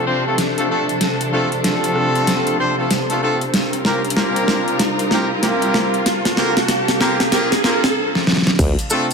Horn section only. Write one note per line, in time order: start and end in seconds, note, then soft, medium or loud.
0.06 0.23 C4 medium
0.06 0.23 D4 medium
0.06 0.23 F4 medium
0.06 0.23 C5 loud
0.26 0.37 A3 medium
0.26 0.37 C4 medium
0.26 0.37 D4 medium
0.26 0.37 F4 medium
0.26 0.37 A4 medium
0.58 0.67 A3 medium
0.58 0.67 C4 medium
0.58 0.67 D4 medium
0.58 0.67 F4 medium
0.58 0.67 A4 loud
0.70 0.87 A3 loud
0.70 0.87 C4 medium
0.70 0.87 D4 medium
0.70 0.87 F4 medium
0.70 0.87 A4 loud
1.32 1.50 A3 loud
1.32 1.50 C4 medium
1.32 1.50 D4 medium
1.32 1.50 F4 medium
1.32 1.50 A4 loud
1.64 2.56 A3 loud
1.64 2.56 C4 loud
1.64 2.56 D4 medium
1.64 2.56 F4 medium
1.64 2.56 A4 loud
2.58 2.75 C4 loud
2.58 2.76 D4 medium
2.58 2.76 F4 medium
2.58 2.76 C5 loud
2.78 2.89 A3 medium
2.78 2.89 C4 medium
2.78 2.89 D4 medium
2.78 2.89 F4 medium
2.78 2.89 A4 medium
3.10 3.19 A3 medium
3.10 3.19 C4 medium
3.10 3.19 D4 medium
3.10 3.19 F4 medium
3.10 3.19 A4 loud
3.22 3.40 A3 loud
3.22 3.40 C4 loud
3.22 3.39 D4 medium
3.22 3.39 F4 medium
3.22 3.40 A4 loud
3.85 4.03 A#3 medium
3.85 4.03 C4 medium
3.85 4.03 F4 medium
3.85 4.03 G4 medium
3.85 4.03 A#4 loud
4.17 4.78 A#3 medium
4.17 4.78 C4 medium
4.17 4.78 F4 medium
4.17 4.78 G4 medium
4.17 4.78 A#4 loud
5.12 5.29 A#3 loud
5.12 5.29 C4 medium
5.12 5.29 F4 medium
5.12 5.29 G4 medium
5.12 5.29 A#4 loud
5.43 6.04 A#3 medium
5.43 6.04 C4 medium
5.43 6.04 F4 medium
5.43 6.04 G4 medium
5.43 6.04 A#4 loud
6.38 6.55 A#3 loud
6.38 6.55 C4 loud
6.38 6.55 F4 medium
6.38 6.55 G4 medium
6.38 6.55 A#4 loud
7.01 7.18 A#3 loud
7.01 7.18 C4 loud
7.01 7.18 F4 medium
7.01 7.18 G4 medium
7.01 7.18 A#4 loud
7.32 7.50 A#3 loud
7.32 7.50 C4 loud
7.32 7.50 F4 medium
7.32 7.50 G4 loud
7.32 7.50 A#4 loud
7.64 7.82 A#3 loud
7.64 7.82 C4 loud
7.64 7.82 F4 loud
7.64 7.82 G4 medium
7.64 7.82 A#4 loud
8.90 9.08 A3 loud
8.90 9.08 C4 loud
8.90 9.08 D4 medium
8.90 9.08 F4 medium
8.90 9.08 A4 loud